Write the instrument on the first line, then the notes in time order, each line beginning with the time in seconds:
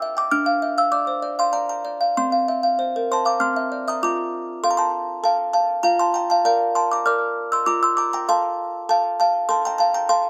music box
Already playing: C5 G5 E6
0.02 E5
0.17 G5 D6
0.31 D4 F6
0.46 F5
0.62 E5
0.78 F5 E6
0.92 D5 D6
1.07 C5
1.22 D5
1.39 F5 C6
1.53 D5 A#5
1.69 A#5
1.85 D5
2.01 F5
2.17 C4 C6
2.32 F5
2.48 E5
2.63 F5
2.79 C5
2.96 A#4
3.12 C5 A5 C6
3.25 F5 A#5 D6
3.40 C4 C6 F6
3.56 E5
3.72 D5
3.88 E5 A#5 D#6
4.03 F4 A#5 D6
4.64 A4 F5 C6
4.71 A#5
4.77 A5 C6
5.24 A4 F5 A5
5.53 F5 A5
5.83 F4 F5 A#5
5.99 A5 C6
6.14 G5 A#5
6.30 F5 A5
6.45 A#4 D5 F5 A#5
6.75 A5 C6
6.91 A#5 D6
7.06 A#4 D5 D6 F6
7.52 C6 E6
7.66 F4 A#5 D6
7.83 C6 E6
7.97 A#5 D6
8.13 G5 A#5
8.28 A4 F5 A5 C6
8.89 A4 F5 A5
9.20 F5 A5
9.49 A4 A5 C6
9.65 G5 A#5
9.78 F5 A5
9.94 G5 A#5
10.09 A4 F5 A5 C6